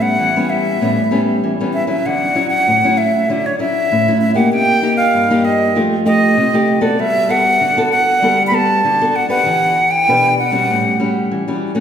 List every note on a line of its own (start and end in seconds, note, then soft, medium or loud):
0.00 0.16 A2 medium
0.00 0.29 G3 medium
0.00 0.29 B3 medium
0.00 0.30 C#4 medium
0.00 0.51 F#5 loud
0.19 0.78 E3 medium
0.36 0.77 G3 medium
0.36 0.77 B3 medium
0.36 0.77 C#4 medium
0.50 1.47 E5 loud
0.81 1.40 A2 medium
0.81 1.00 G3 soft
0.81 1.00 B3 medium
0.81 1.00 C#4 medium
1.11 1.53 G3 medium
1.11 1.53 B3 medium
1.11 1.53 C#4 medium
1.44 2.02 E3 medium
1.60 1.86 G3 medium
1.60 1.86 B3 medium
1.60 1.86 C#4 medium
1.73 1.88 E5 medium
1.87 2.30 F#3 medium
1.87 2.30 C#4 medium
1.87 2.30 E4 medium
1.87 2.08 E5 medium
2.06 2.64 D3 medium
2.06 2.49 F#5 loud
2.35 2.77 F#3 medium
2.35 2.77 C#4 medium
2.35 2.77 E4 medium
2.50 2.99 F#5 loud
2.67 3.26 A2 medium
2.84 3.25 F#3 medium
2.84 3.25 C#4 medium
2.84 3.25 E4 medium
2.98 3.48 E5 medium
3.29 3.88 D3 medium
3.29 3.47 F#3 medium
3.29 3.47 C#4 medium
3.29 3.48 E4 medium
3.46 3.59 C#5 medium
3.59 4.01 F#3 medium
3.59 4.01 C#4 medium
3.59 4.01 E4 medium
3.59 4.17 E5 loud
3.92 4.50 A2 medium
4.08 4.33 F#3 medium
4.08 4.33 C#4 medium
4.08 4.33 E4 medium
4.21 4.34 E5 loud
4.35 4.77 A#3 medium
4.35 4.77 D#4 medium
4.35 4.78 G4 medium
4.35 4.50 F#5 medium
4.52 5.11 C3 medium
4.52 4.96 G5 loud
4.82 5.24 A#3 medium
4.82 5.25 D#4 medium
4.82 5.25 G4 medium
4.97 5.46 F5 loud
5.14 5.73 G2 medium
5.30 5.72 A#3 medium
5.30 5.72 D#4 medium
5.30 5.72 G4 medium
5.45 5.80 D#5 medium
5.75 6.35 F3 medium
5.75 5.94 A3 medium
5.75 5.94 D#4 medium
5.75 5.94 G4 medium
6.05 6.35 A3 medium
6.05 6.35 D#4 medium
6.05 6.36 G4 medium
6.05 6.84 D#5 loud
6.37 6.96 C3 medium
6.54 6.80 A3 medium
6.54 6.80 D#4 medium
6.54 6.80 G4 medium
6.81 7.24 B3 medium
6.81 7.24 F#4 medium
6.81 7.24 A4 medium
6.81 7.01 D5 medium
6.99 7.58 G3 medium
6.99 7.32 E5 loud
7.29 7.71 B3 medium
7.29 7.71 F#4 medium
7.29 7.71 A4 medium
7.29 7.92 F#5 loud
7.61 8.20 D3 medium
7.77 8.18 B3 medium
7.77 8.19 F#4 medium
7.77 8.19 A4 medium
7.92 8.43 F#5 loud
8.22 8.82 G3 medium
8.22 8.41 B3 medium
8.22 8.41 F#4 medium
8.22 8.42 A4 medium
8.47 8.94 B3 medium
8.47 8.56 B5 medium
8.52 8.95 F#4 medium
8.52 8.95 A4 medium
8.52 9.17 A5 loud
8.84 9.44 D3 medium
9.01 9.27 B3 medium
9.01 9.27 F#4 medium
9.01 9.27 A4 medium
9.16 9.30 F#5 loud
9.29 9.72 D4 medium
9.29 9.72 G4 medium
9.29 9.72 B4 medium
9.29 9.93 F#5 loud
9.46 10.05 E3 medium
9.91 10.38 G5 loud
10.08 10.67 B2 medium
10.08 10.38 D4 medium
10.08 10.38 G4 medium
10.08 10.38 B4 medium
10.39 11.28 F#5 loud
10.52 10.95 G3 medium
10.52 10.95 C#4 medium
10.52 10.95 F#4 medium
10.70 11.29 A2 medium
11.00 11.42 G3 medium
11.00 11.42 C#4 medium
11.00 11.42 F#4 medium
11.31 11.80 E3 medium
11.48 11.74 G3 medium
11.48 11.74 C#4 medium
11.48 11.74 F#4 medium
11.75 11.80 A3 medium
11.75 11.80 C#4 medium
11.75 11.80 F#4 medium